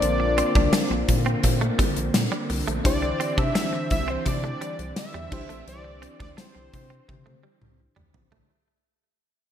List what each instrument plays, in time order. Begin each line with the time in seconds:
Already playing: analog synth pad D3 A#3 C4, fm electric piano D4 F4 A#4 C5, analog synth lead D5
0.02 analog synth bass A#1, closed hi-hat
0.20 muted clean electric guitar stroke
0.38 clean electric guitar C4, closed hi-hat
0.55 analog synth bass C2, clean electric guitar D4, kick
0.73 clean electric guitar D4, snare, closed hi-hat, tambourine
0.90 analog synth bass A#1, muted clean electric guitar stroke
1.08 analog synth bass A#2, kick, closed hi-hat
1.26 clean electric guitar C4
1.43 analog synth bass A#2, muted clean electric guitar stroke, kick, closed hi-hat
1.61 clean electric guitar A3
1.79 clean electric guitar G3, kick, closed hi-hat
1.96 analog synth bass A#1, closed hi-hat
2.14 analog synth bass A#2, snare, closed hi-hat, tambourine
2.32 clean electric guitar G3
2.50 analog synth bass C2, muted clean electric guitar stroke, open hi-hat
2.68 analog synth bass A#1, clean electric guitar A3, closed hi-hat
2.84 analog synth bass C2, analog synth pad E3 C4, fm electric piano D4 E4 G4 C5, analog synth lead D5, kick, closed hi-hat
3.02 muted clean electric guitar stroke
3.20 clean electric guitar C4, closed hi-hat
3.38 analog synth bass C3, clean electric guitar D4, analog synth lead E5, kick
3.55 clean electric guitar D4, snare, closed hi-hat, tambourine
3.73 muted clean electric guitar stroke
3.90 analog synth bass C2, analog synth lead E5, kick, closed hi-hat
4.08 clean electric guitar C4, analog synth lead C5
4.26 analog synth bass C3, analog synth lead D5, muted clean electric guitar stroke, kick, closed hi-hat
4.44 clean electric guitar A3
4.61 clean electric guitar G3, closed hi-hat
4.79 analog synth bass C2, closed hi-hat
4.96 analog synth lead E5, snare, closed hi-hat, tambourine
5.14 analog synth bass E2, clean electric guitar G3
5.31 analog synth bass C2, analog synth pad C4, fm electric piano D4 E4 G4 C5, muted clean electric guitar stroke, kick, crash
5.49 analog synth bass A#1, clean electric guitar A3, closed hi-hat
5.67 analog synth bass C2, analog synth lead D5, closed hi-hat
5.84 muted clean electric guitar stroke
6.02 clean electric guitar C4, closed hi-hat
6.20 analog synth bass D2, clean electric guitar D4, analog synth lead D5, kick
6.37 clean electric guitar D4, analog synth lead C5, snare, closed hi-hat, tambourine
6.55 analog synth bass C2, muted clean electric guitar stroke
6.73 analog synth bass C3, kick, closed hi-hat
6.90 clean electric guitar C4
7.09 analog synth bass C3, muted clean electric guitar stroke, kick, high tom
7.26 clean electric guitar A3, high tom
7.43 clean electric guitar G3
7.62 analog synth bass C2, mid tom
7.96 analog synth bass D2, clean electric guitar G3, mid tom
8.14 analog synth bass A#1, muted clean electric guitar stroke, floor tom
8.32 clean electric guitar A3, floor tom